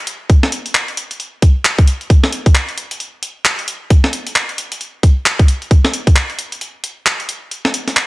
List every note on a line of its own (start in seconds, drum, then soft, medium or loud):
0.07 closed hi-hat loud
0.30 kick loud
0.30 closed hi-hat medium
0.43 snare medium
0.52 closed hi-hat loud
0.66 closed hi-hat medium
0.75 clap loud
0.88 closed hi-hat soft
0.97 closed hi-hat loud
1.11 closed hi-hat medium
1.20 closed hi-hat medium
1.42 kick loud
1.42 closed hi-hat loud
1.65 clap loud
1.78 kick loud
1.78 closed hi-hat soft
1.87 closed hi-hat loud
2.01 closed hi-hat soft
2.10 kick loud
2.10 closed hi-hat medium
2.24 snare medium
2.33 closed hi-hat loud
2.46 kick loud
2.46 closed hi-hat medium
2.55 clap loud
2.69 closed hi-hat soft
2.78 closed hi-hat loud
2.91 closed hi-hat medium
3.00 closed hi-hat medium
3.23 closed hi-hat loud
3.45 clap loud
3.59 closed hi-hat soft
3.68 closed hi-hat loud
3.90 kick loud
3.90 closed hi-hat medium
4.04 snare medium
4.13 closed hi-hat loud
4.27 closed hi-hat medium
4.36 clap loud
4.49 closed hi-hat soft
4.58 closed hi-hat loud
4.72 closed hi-hat medium
4.81 closed hi-hat medium
5.03 kick loud
5.03 closed hi-hat loud
5.26 clap loud
5.39 kick loud
5.39 closed hi-hat medium
5.48 closed hi-hat loud
5.62 closed hi-hat soft
5.71 kick loud
5.71 closed hi-hat medium
5.85 snare medium
5.94 closed hi-hat loud
6.07 kick loud
6.07 closed hi-hat medium
6.16 clap loud
6.30 closed hi-hat soft
6.39 closed hi-hat loud
6.52 closed hi-hat medium
6.61 closed hi-hat medium
6.84 closed hi-hat loud
7.06 clap loud
7.20 closed hi-hat medium
7.29 closed hi-hat loud
7.51 closed hi-hat medium
7.65 snare medium
7.74 closed hi-hat loud
7.88 snare soft
7.88 closed hi-hat medium
7.97 clap loud